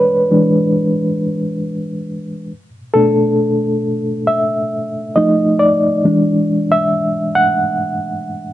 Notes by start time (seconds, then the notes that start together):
Already playing: E3 G#3 D4 B4 C#5 D5
0.31 E3 G#3 D4
2.94 B2 A3 D4 A4
4.27 E5
5.16 F3 A3 D#4 D#5
5.59 D5
6.04 E3 G#3 D4
6.72 E5
7.35 F#5